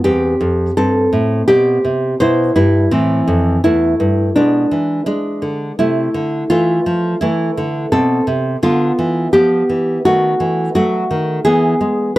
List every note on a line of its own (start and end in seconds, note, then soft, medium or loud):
0.04 0.34 E2 medium
0.04 0.73 C4 medium
0.04 0.74 G4 loud
0.41 0.70 F2 medium
0.77 1.06 G2 medium
0.77 1.45 C4 medium
0.77 1.46 A4 medium
1.13 1.41 A2 medium
1.48 1.77 B2 medium
1.48 2.17 C4 medium
1.48 2.18 G4 loud
1.85 2.14 C3 medium
2.20 2.50 B2 medium
2.20 2.54 E4 medium
2.20 2.55 C5 loud
2.56 2.85 G2 medium
2.56 2.90 G3 medium
2.56 2.91 E4 medium
2.91 3.20 A2 medium
2.91 3.60 E3 medium
2.91 3.60 C4 medium
3.28 3.56 F2 medium
3.64 3.93 E2 medium
3.64 4.32 A3 medium
3.64 4.33 E4 loud
4.00 4.29 G2 medium
4.36 4.65 B2 medium
4.36 5.04 G#3 medium
4.36 5.04 D4 loud
4.71 5.00 E3 medium
5.06 5.75 G#3 medium
5.06 5.76 D4 medium
5.42 5.71 D3 medium
5.79 6.08 C3 medium
5.79 6.47 A3 medium
5.79 6.47 E4 loud
6.14 6.43 D3 medium
6.50 6.79 E3 medium
6.50 7.17 A3 medium
6.50 7.18 F4 loud
6.86 7.14 F3 medium
7.21 7.50 E3 medium
7.21 7.88 A3 medium
7.21 7.88 E4 medium
7.57 7.85 D3 medium
7.92 8.20 B2 medium
7.92 8.25 C4 medium
7.92 8.25 A4 medium
8.27 8.55 C3 medium
8.63 8.91 D3 medium
8.63 9.30 B3 medium
8.63 9.31 F4 loud
8.99 9.27 E3 medium
9.33 9.62 F3 medium
9.33 10.01 B3 medium
9.33 10.01 G4 loud
9.69 9.98 E3 medium
10.05 10.33 D#3 medium
10.05 10.72 A3 medium
10.05 10.73 F#4 loud
10.40 10.68 E3 medium
10.75 11.03 F#3 medium
10.75 11.42 A3 medium
10.75 11.43 F#4 loud
11.11 11.39 D#3 medium
11.45 11.74 E3 medium
11.45 12.13 B3 medium
11.45 12.13 G#4 loud
11.81 12.09 G#3 medium